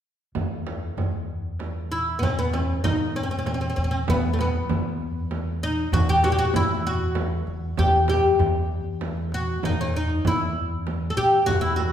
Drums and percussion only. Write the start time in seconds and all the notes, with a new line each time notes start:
0.35 frame drum, tombak dum
0.67 tombak tek, frame drum
0.98 frame drum, tombak dum
1.59 tombak tek, frame drum
1.91 tombak ka
2.21 tombak dum, frame drum
2.53 tombak tek, frame drum
2.84 tombak dum, frame drum
3.46 tombak tek, frame drum
4.08 tombak dum, frame drum
4.39 frame drum
4.69 frame drum, tombak dum
5.31 tombak tek, frame drum
5.62 tombak ka
5.92 tombak dum, frame drum
6.23 tombak tek, frame drum
6.54 frame drum, tombak dum
7.15 tombak tek, frame drum
7.47 tombak ka
7.77 frame drum, tombak dum
8.08 tombak tek, frame drum
8.39 tombak dum, frame drum
8.70 tombak ka
9.01 tombak tek, frame drum
9.17 tombak ka
9.32 tombak tek
9.48 tombak ka
9.63 frame drum, tombak dum
9.94 tombak tek
10.25 tombak dum, frame drum
10.87 tombak tek, frame drum
11.48 tombak dum, frame drum
11.79 tombak tek, frame drum